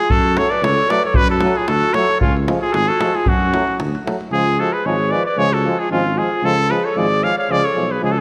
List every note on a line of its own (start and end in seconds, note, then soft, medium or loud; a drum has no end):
0.00 0.13 F4 medium
0.00 0.12 G#4 loud
0.10 0.40 F#2 medium
0.10 0.41 F#4 loud
0.10 0.39 A4 loud
0.10 davul low medium
0.24 davul high soft
0.36 0.47 F#3 medium
0.36 0.48 A3 medium
0.36 0.53 A4 medium
0.36 0.53 C#5 medium
0.36 davul high medium
0.51 0.64 B4 medium
0.51 0.66 D5 medium
0.51 davul high soft
0.62 0.77 C#2 medium
0.62 0.90 A4 medium
0.62 0.92 C#5 loud
0.62 davul high medium
0.78 davul high soft
0.89 1.00 F#3 medium
0.89 1.00 A3 medium
0.89 1.03 B4 medium
0.89 1.04 D5 loud
0.89 davul high medium
1.04 1.18 A4 medium
1.04 1.17 C#5 medium
1.04 davul high soft
1.14 1.45 F#2 medium
1.14 1.30 F#4 loud
1.14 1.30 B4 loud
1.14 davul low loud
1.29 1.59 F#4 medium
1.29 1.59 A4 loud
1.29 davul high soft
1.40 1.53 F#3 medium
1.40 1.53 A3 medium
1.40 davul high medium
1.56 1.72 F4 medium
1.56 1.70 G#4 medium
1.56 davul high soft
1.68 1.83 D2 medium
1.68 1.96 F#4 medium
1.68 1.96 A4 loud
1.68 davul high medium
1.83 davul high soft
1.94 2.06 F#3 medium
1.94 2.06 A3 medium
1.94 2.20 A4 loud
1.94 2.20 C#5 loud
1.94 davul high medium
2.09 davul high soft
2.21 2.51 C#2 medium
2.21 2.34 C#4 medium
2.21 2.34 F4 medium
2.21 davul low medium
2.37 davul high soft
2.47 2.58 F3 medium
2.47 2.59 G#3 medium
2.47 davul high medium
2.61 2.70 F4 medium
2.61 2.70 G#4 medium
2.61 davul high soft
2.71 2.88 G#1 loud
2.71 2.88 F4 medium
2.71 2.76 F#4 medium
2.71 2.90 G#4 loud
2.71 2.75 A4 medium
2.71 davul high medium
2.87 3.16 F#4 medium
2.87 3.17 A4 loud
2.87 davul high soft
3.00 3.10 F3 medium
3.00 3.12 G#3 medium
3.00 davul high medium
3.15 3.29 F4 medium
3.15 3.30 G#4 medium
3.15 davul high soft
3.26 3.55 F#2 loud
3.26 3.80 C#4 medium
3.26 3.80 F#4 loud
3.26 davul low medium
3.40 davul high soft
3.52 3.63 F#3 medium
3.52 3.64 A3 medium
3.52 davul high medium
3.67 davul high soft
3.79 3.94 D2 medium
3.79 davul high medium
3.95 davul high soft
4.05 4.16 F#3 medium
4.05 4.16 A3 medium
4.05 davul high medium
4.21 davul high soft
4.31 4.60 C#2 medium
4.31 4.43 F3 medium
4.31 4.44 G#3 medium
4.31 4.61 F4 medium
4.31 4.61 G#4 loud
4.59 4.70 F3 soft
4.59 4.70 G#3 soft
4.59 4.75 F#4 medium
4.59 4.75 A4 medium
4.73 4.85 G#4 medium
4.73 4.88 B4 medium
4.84 5.13 G#1 medium
4.84 4.96 F3 medium
4.84 4.96 G#3 medium
4.84 5.13 G#4 medium
4.84 5.12 C#5 medium
5.11 5.23 F3 medium
5.11 5.21 G#3 medium
5.11 5.25 B4 medium
5.11 5.25 D5 medium
5.25 5.41 B4 medium
5.25 5.40 D5 medium
5.37 5.66 C#2 loud
5.37 5.48 F3 medium
5.37 5.48 G#3 medium
5.37 5.54 G#4 medium
5.37 5.55 C#5 loud
5.52 5.80 F#4 medium
5.52 5.81 A4 medium
5.65 5.76 F3 medium
5.65 5.76 G#3 medium
5.78 5.90 F4 medium
5.78 5.91 G#4 medium
5.90 6.19 G#1 medium
5.90 6.02 F3 medium
5.90 6.02 G#3 medium
5.90 6.17 C#4 medium
5.90 6.20 F4 medium
6.15 6.29 F3 medium
6.15 6.27 G#3 medium
6.15 6.43 F4 medium
6.15 6.47 G#4 medium
6.43 6.72 C#2 loud
6.43 6.54 F3 medium
6.43 6.54 G#3 medium
6.43 6.72 F4 medium
6.43 6.72 A4 loud
6.69 6.80 F3 medium
6.69 6.80 G#3 medium
6.69 6.87 G#4 medium
6.69 6.86 B4 medium
6.85 6.99 A4 medium
6.85 6.99 C#5 medium
6.96 7.25 G#1 medium
6.96 7.07 F3 medium
6.96 7.07 G#3 medium
6.96 7.25 G#4 medium
6.96 7.25 D5 loud
7.23 7.34 F3 medium
7.23 7.34 G#3 medium
7.23 7.37 C#5 medium
7.23 7.37 F5 loud
7.38 7.52 C#5 medium
7.38 7.53 F5 medium
7.49 7.64 C#2 loud
7.49 7.60 F3 medium
7.49 7.60 G#3 medium
7.49 7.67 G#4 loud
7.49 7.66 D5 loud
7.65 7.93 A4 medium
7.65 7.93 C#5 medium
7.74 7.99 B1 medium
7.74 7.85 F3 medium
7.74 7.86 G#3 medium
7.92 8.02 G#4 medium
7.92 8.03 B4 medium
8.00 8.21 C#2 medium
8.00 8.11 F3 medium
8.00 8.13 G#3 medium
8.00 8.11 F4 medium
8.05 8.13 G#4 medium
8.09 8.19 F#4 medium
8.09 8.20 A4 medium
8.17 8.21 F4 medium